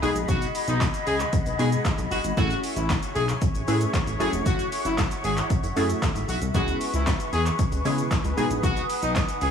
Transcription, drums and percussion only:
0.03 open hi-hat, shaker
0.16 closed hi-hat, shaker
0.29 kick, closed hi-hat, shaker
0.42 closed hi-hat, shaker
0.55 open hi-hat, shaker
0.68 closed hi-hat, shaker
0.81 kick, snare, clap, closed hi-hat, shaker
0.94 closed hi-hat, shaker
1.07 open hi-hat, shaker
1.20 clap, closed hi-hat, shaker
1.33 kick, closed hi-hat, shaker
1.46 closed hi-hat, shaker
1.59 open hi-hat, shaker
1.72 closed hi-hat, shaker
1.85 kick, snare, clap, closed hi-hat, shaker
1.98 closed hi-hat, shaker
2.11 open hi-hat, shaker
2.24 closed hi-hat, shaker
2.37 kick, closed hi-hat, shaker
2.50 closed hi-hat, shaker
2.64 open hi-hat, shaker
2.77 closed hi-hat, shaker
2.90 kick, snare, clap, closed hi-hat, shaker
3.02 closed hi-hat, shaker
3.15 open hi-hat, shaker
3.29 clap, closed hi-hat, shaker
3.42 kick, closed hi-hat, shaker
3.55 closed hi-hat, shaker
3.68 open hi-hat, shaker
3.81 closed hi-hat, shaker
3.94 kick, snare, clap, closed hi-hat, shaker
4.07 closed hi-hat, shaker
4.20 open hi-hat, shaker
4.33 closed hi-hat, shaker
4.46 kick, closed hi-hat, shaker
4.59 closed hi-hat, shaker
4.72 open hi-hat, shaker
4.85 closed hi-hat, shaker
4.98 kick, snare, clap, closed hi-hat, shaker
5.11 closed hi-hat, shaker
5.24 open hi-hat, shaker
5.38 clap, closed hi-hat, shaker
5.50 kick, closed hi-hat, shaker
5.64 closed hi-hat, shaker
5.77 open hi-hat, shaker
5.90 closed hi-hat, shaker
6.02 kick, snare, clap, closed hi-hat, shaker
6.16 closed hi-hat, shaker
6.29 open hi-hat, shaker
6.42 closed hi-hat, shaker
6.55 kick, closed hi-hat, shaker
6.68 closed hi-hat, shaker
6.81 open hi-hat, shaker
6.94 closed hi-hat, shaker
7.07 kick, snare, clap, closed hi-hat, shaker
7.20 closed hi-hat, shaker
7.33 open hi-hat, shaker
7.46 clap, closed hi-hat, shaker
7.59 kick, closed hi-hat, shaker
7.72 closed hi-hat, shaker
7.85 open hi-hat, shaker
7.98 closed hi-hat, shaker
8.11 kick, snare, clap, closed hi-hat, shaker
8.24 closed hi-hat, shaker
8.38 open hi-hat, shaker
8.51 closed hi-hat, shaker
8.64 kick, closed hi-hat, shaker
8.76 closed hi-hat, shaker
8.90 open hi-hat, shaker
9.02 closed hi-hat, shaker
9.16 kick, snare, clap, closed hi-hat, shaker
9.29 closed hi-hat, shaker
9.41 open hi-hat, shaker

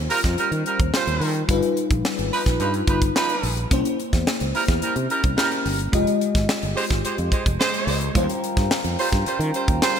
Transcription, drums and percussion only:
0.10 open hi-hat
0.24 kick, snare, closed hi-hat
0.38 closed hi-hat
0.52 closed hi-hat
0.66 closed hi-hat
0.80 kick, closed hi-hat
0.94 snare
1.07 closed hi-hat
1.21 open hi-hat
1.34 closed hi-hat
1.49 kick, closed hi-hat
1.63 closed hi-hat
1.77 closed hi-hat
1.91 kick, closed hi-hat
2.05 snare
2.19 closed hi-hat
2.33 open hi-hat
2.46 kick, snare, closed hi-hat
2.60 closed hi-hat
2.74 closed hi-hat
2.87 kick, closed hi-hat
3.02 kick, closed hi-hat
3.16 snare
3.29 closed hi-hat
3.43 open hi-hat
3.57 closed hi-hat
3.71 kick, closed hi-hat
3.85 closed hi-hat
4.00 closed hi-hat
4.13 kick, snare, closed hi-hat
4.27 snare
4.40 closed hi-hat
4.55 open hi-hat
4.68 kick, snare, closed hi-hat
4.82 closed hi-hat
4.96 closed hi-hat
5.10 closed hi-hat
5.24 kick, closed hi-hat
5.38 snare
5.51 closed hi-hat
5.66 open hi-hat
5.79 closed hi-hat
5.93 kick, closed hi-hat
6.07 closed hi-hat
6.21 closed hi-hat
6.35 kick, snare, closed hi-hat
6.49 snare
6.63 closed hi-hat
6.77 open hi-hat
6.91 kick, snare, closed hi-hat
7.05 closed hi-hat
7.18 closed hi-hat
7.32 kick, closed hi-hat
7.46 kick, closed hi-hat
7.61 snare
7.74 closed hi-hat
7.88 open hi-hat
8.01 closed hi-hat
8.15 kick, closed hi-hat
8.29 closed hi-hat
8.44 closed hi-hat
8.57 kick, snare, closed hi-hat
8.71 snare
8.85 closed hi-hat
8.99 open hi-hat
9.13 kick, snare
9.26 closed hi-hat
9.41 closed hi-hat
9.54 closed hi-hat
9.68 kick, closed hi-hat
9.82 snare
9.96 closed hi-hat

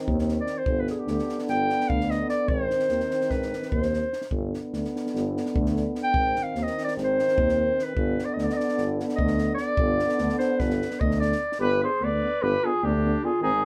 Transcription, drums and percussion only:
0.08 kick
0.19 snare
0.29 snare
0.47 snare
0.66 kick
0.87 snare
1.08 snare
1.19 snare
1.29 snare
1.39 snare
1.48 snare
1.70 snare
1.81 snare
1.90 kick
2.01 snare
2.11 snare
2.29 snare
2.48 kick
2.70 snare
2.79 snare
2.89 snare
3.00 snare
3.11 snare
3.21 snare
3.30 kick, snare
3.42 snare
3.53 snare
3.63 snare
3.72 kick
3.83 snare
3.94 snare
4.13 snare
4.22 snare
4.31 kick
4.54 snare
4.73 snare
4.85 snare
4.96 snare
5.07 snare
5.16 snare
5.37 snare
5.46 snare
5.56 kick
5.66 snare
5.77 snare
5.95 snare
6.14 kick
6.36 snare
6.55 snare
6.67 snare
6.78 snare
6.88 snare
6.98 snare
7.19 snare
7.28 snare
7.38 kick
7.49 snare
7.79 snare
7.97 kick
8.19 snare
8.39 snare
8.50 snare
8.60 snare
8.69 snare
8.78 snare
9.00 snare
9.09 snare
9.19 kick
9.28 snare
9.39 snare
9.58 snare
9.77 kick
9.99 snare
10.09 snare
10.18 snare
10.29 snare
10.40 snare
10.60 kick, snare
10.71 snare
10.82 snare
10.91 snare
11.01 kick
11.11 snare
11.22 snare
11.32 snare
11.52 snare

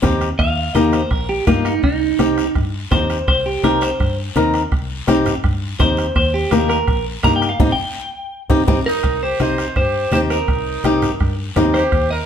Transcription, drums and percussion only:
0.03 bombo low, bombo rim, high conga, low conga, short guiro
0.21 bombo rim, short guiro
0.39 bombo low, bombo rim, high conga, long guiro
0.75 bombo rim, high conga, short guiro
0.93 bombo rim, short guiro
1.11 bombo low, bombo rim, high conga, long guiro
1.47 bombo low, bombo rim, high conga, short guiro
1.65 bombo rim, short guiro
1.83 bombo low, bombo rim, high conga, long guiro
2.19 bombo rim, high conga, short guiro
2.38 bombo rim, short guiro
2.55 bombo low, bombo rim, high conga, long guiro
2.91 bombo low, bombo rim, high conga, low conga, short guiro
3.10 bombo rim, short guiro
3.28 bombo low, bombo rim, high conga, long guiro
3.64 bombo rim, high conga, short guiro
3.81 bombo rim, short guiro
4.00 bombo low, bombo rim, high conga, long guiro
4.36 bombo rim, high conga, short guiro
4.54 bombo rim, short guiro
4.72 bombo low, bombo rim, high conga, long guiro
5.08 bombo rim, high conga, short guiro
5.26 bombo rim, low conga, short guiro
5.44 bombo low, bombo rim, high conga, long guiro
5.80 bombo low, bombo rim, high conga, low conga, short guiro
5.97 bombo rim, short guiro
6.15 bombo low, bombo rim, high conga, long guiro
6.51 bombo rim, high conga, short guiro
6.69 bombo rim, short guiro
6.87 bombo low, bombo rim, high conga, long guiro
7.23 bombo low, bombo rim, high conga, short guiro
7.42 bombo rim, short guiro
7.60 bombo low, low conga, long guiro
8.50 bombo low, low conga, long guiro
8.68 bombo low, low conga, long guiro
9.03 bombo low, bombo rim, high conga, long guiro
9.40 bombo rim, high conga, short guiro
9.58 bombo rim, short guiro
9.76 bombo low, bombo rim, high conga, long guiro
10.12 bombo rim, high conga, short guiro
10.30 bombo rim, short guiro
10.48 bombo low, bombo rim, high conga, long guiro
10.84 bombo rim, high conga, short guiro
11.02 bombo rim, low conga, short guiro
11.20 bombo low, bombo rim, high conga, long guiro
11.56 bombo rim, high conga, low conga, short guiro
11.74 bombo rim, short guiro
11.92 bombo low, bombo rim, high conga, long guiro

